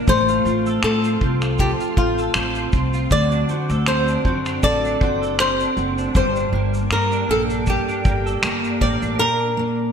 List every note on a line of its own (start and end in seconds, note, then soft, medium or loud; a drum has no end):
0.00 0.16 A#3 medium
0.00 0.16 D4 medium
0.00 0.16 D4 soft
0.00 0.16 A#4 medium
0.07 0.39 A1 medium
0.07 1.58 F3 medium
0.07 3.58 A3 medium
0.07 0.84 C5 medium
0.07 kick medium
0.07 shaker medium
0.28 1.04 F4 medium
0.28 shaker soft
0.45 0.76 A1 medium
0.45 0.83 C4 soft
0.45 1.21 F4 soft
0.45 shaker soft
0.66 2.18 A4 medium
0.66 shaker soft
0.83 1.14 A2 medium
0.83 1.21 C4 medium
0.83 2.35 C4 medium
0.83 1.62 A4 medium
0.83 finger snap loud
0.83 shaker medium
1.04 1.41 F4 medium
1.04 shaker soft
1.21 1.70 C2 medium
1.21 1.97 C4 medium
1.21 1.96 F4 medium
1.21 kick medium
1.41 1.79 F4 medium
1.41 finger snap soft
1.41 shaker medium
1.58 3.10 F3 medium
1.58 1.70 G4 medium
1.58 4.62 A4 medium
1.58 kick medium
1.58 shaker medium
1.80 2.55 F4 medium
1.80 shaker soft
1.97 2.28 A1 medium
1.97 2.35 C4 medium
1.97 2.72 F4 medium
1.97 2.70 F4 medium
1.97 kick medium
2.18 3.70 A4 medium
2.18 shaker soft
2.34 2.66 A1 medium
2.34 3.52 C4 medium
2.34 2.73 C4 medium
2.34 finger snap loud
2.34 shaker medium
2.55 2.93 F4 medium
2.55 shaker soft
2.72 3.04 C2 medium
2.72 3.35 C4 medium
2.72 3.20 F4 soft
2.72 kick medium
2.72 shaker soft
2.94 3.20 F4 medium
2.94 shaker soft
3.11 3.42 D2 medium
3.11 6.61 D3 medium
3.11 4.62 F#3 medium
3.11 3.87 D5 medium
3.11 kick medium
3.11 shaker medium
3.31 4.08 D4 soft
3.31 shaker medium
3.49 3.86 C4 medium
3.49 4.24 F#4 medium
3.49 shaker soft
3.69 4.15 D2 medium
3.69 5.21 A4 medium
3.69 shaker soft
3.86 4.24 C4 medium
3.86 5.38 C4 medium
3.86 4.63 C5 medium
3.86 finger snap medium
3.86 shaker medium
4.08 4.45 D4 medium
4.08 shaker medium
4.25 4.56 F#2 medium
4.25 5.00 C4 medium
4.25 5.00 F#4 medium
4.25 kick medium
4.45 4.84 D4 medium
4.45 finger snap soft
4.45 shaker soft
4.63 4.95 A1 medium
4.63 6.15 F#3 medium
4.63 6.56 A4 medium
4.63 5.36 D5 medium
4.63 kick medium
4.63 shaker medium
4.84 5.59 D4 medium
4.84 shaker soft
5.01 5.63 F#1 medium
5.01 5.38 C4 medium
5.01 5.75 F#4 medium
5.01 kick medium
5.22 6.57 A4 medium
5.22 shaker soft
5.39 6.24 C4 medium
5.39 5.76 C4 medium
5.39 6.15 C5 medium
5.39 finger snap loud
5.39 shaker medium
5.60 5.97 D4 medium
5.60 shaker soft
5.77 6.08 F#1 medium
5.77 6.24 C4 medium
5.77 6.23 F#4 soft
5.77 shaker soft
5.98 6.36 D4 medium
5.98 shaker soft
6.15 6.46 G1 medium
6.15 9.18 G2 medium
6.15 7.66 G3 medium
6.15 6.88 C5 medium
6.15 kick medium
6.15 shaker medium
6.36 7.12 D4 soft
6.36 shaker soft
6.53 6.84 G1 medium
6.53 6.91 A#3 medium
6.53 7.28 G4 medium
6.74 shaker soft
6.91 7.22 G2 medium
6.91 7.28 A#3 medium
6.91 8.43 A#3 medium
6.91 7.30 A#4 medium
6.91 finger snap medium
6.91 shaker medium
7.12 7.50 D4 medium
7.12 shaker medium
7.29 7.77 A#1 medium
7.29 8.05 A#3 medium
7.29 8.05 G4 soft
7.29 7.41 A4 medium
7.50 7.88 D4 medium
7.50 shaker soft
7.66 9.27 G3 medium
7.66 8.78 G4 medium
7.66 9.28 A4 medium
7.66 kick medium
7.66 shaker medium
7.88 8.63 D4 medium
7.88 shaker soft
8.05 8.36 G1 medium
8.05 8.43 A#3 medium
8.05 8.80 G4 soft
8.05 kick medium
8.05 shaker soft
8.26 9.27 A4 medium
8.26 shaker soft
8.43 8.60 G1 medium
8.43 8.80 A#3 medium
8.43 9.57 A#3 medium
8.43 finger snap loud
8.43 shaker medium
8.64 9.02 D4 soft
8.64 shaker soft
8.81 8.98 A1 medium
8.81 9.77 A#3 medium
8.81 9.28 G4 medium
8.81 9.17 D5 medium
8.81 kick medium
8.81 shaker soft
9.02 9.16 A1 medium
9.02 9.77 D4 medium
9.02 shaker soft
9.19 9.92 A#2 medium
9.19 9.92 A#4 medium
9.57 9.92 A#3 medium